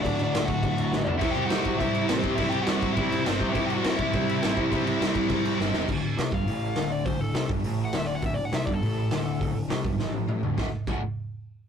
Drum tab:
CC |xxxxxx--|xxxxxxxx|xxxxxxxx|xxxxxxxx|
HH |--------|--------|--------|--------|
SD |--o---o-|--o---o-|--o---o-|--o---o-|
T1 |--------|--------|--------|--------|
T2 |--------|--------|--------|--------|
FT |-------o|--------|--------|--------|
BD |o--oo---|o--oo--o|o--oo--o|o--oo--o|

CC |xxxxxx--|x-------|--------|--------|
HH |--------|--o-o-o-|o-o-o-o-|o-o-o-o-|
SD |--o---oo|--o---o-|--o---o-|--o---o-|
T1 |--------|--------|--------|--------|
T2 |--------|--------|--------|--------|
FT |--------|--------|--------|--------|
BD |o--oo---|o--o----|o--o----|o--o----|

CC |--------|--x-----|
HH |o-o-----|--------|
SD |--o-o---|o-------|
T1 |-----o--|--------|
T2 |------o-|--------|
FT |-------o|--------|
BD |o--o----|o-o-----|